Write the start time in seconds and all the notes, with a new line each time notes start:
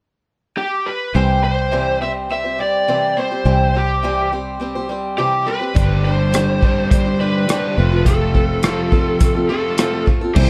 0.57 G4
0.86 B4
1.14 C2 C3 E3 G3 C4 G4 C5
1.42 G3 C4 G4 C5
1.71 C3 E3 G3 C4 G4 C5
2.01 G3 C4 G4 C5 E5
2.29 G3 C4 G4 C5 E5
2.44 G3 C4 G4 C5
2.58 G3 C4 G4 C5 D5
2.87 C3 E3 G3 C4 G4 C5
3.17 G3 C4 G4 C5
3.31 G3 C4 G4 C5
3.45 C2 C3 E3 G3 C4 G4 C5
3.73 G3 C4 G4 C5
4.03 C3 E3 G3 C4 G4 C5
4.32 G3 C4 G4 C5
4.59 G3 C4 G4 C5
4.75 G3 C4 G4 C5
4.89 G3 C4 G4 C5
5.17 C3 E3 G3 C4 G4 C5
5.46 G3 C4 G4 B4 C5
5.60 G3 C4 G4 C5
5.74 G1 G2 D3 G3 C4 D4 G4 C5, kick, closed hi-hat
6.03 G3 D4 G4 C5
6.32 G3 D4 G4 C5, cross-stick, closed hi-hat
6.61 D3 G3 C4 D4 G4 C5, kick
6.65 G2
6.91 G3 D4 G4 C5, kick, closed hi-hat
7.05 D4 G4 C5
7.19 G3 D4 G4 B4 C5
7.48 G2 D3 G3 C4 D4 G4 C5, cross-stick, closed hi-hat
7.76 F1 F2 C3 F3 A3 C4 F4 A4
7.91 C4 F4 A4
8.05 F3 A3 C4 F4 A4, kick, closed hi-hat
8.33 A3 C4 F4 A4, kick
8.62 F2 C3 F3 A3 C4 F4 A4, cross-stick, closed hi-hat
8.90 A3 C4 F4 A4, kick
9.19 A3 C4 F4 A4, kick, closed hi-hat
9.34 C4 F4 A4
9.49 F2 C3 F3 A3 C4 F4 A4
9.78 F3 A3 C4 F4 A4, cross-stick, closed hi-hat
10.06 A3 C4 F4 A4, kick
10.21 C4 F4 A4
10.35 C2 C3 E3 G3 C4 E4 C5, kick, crash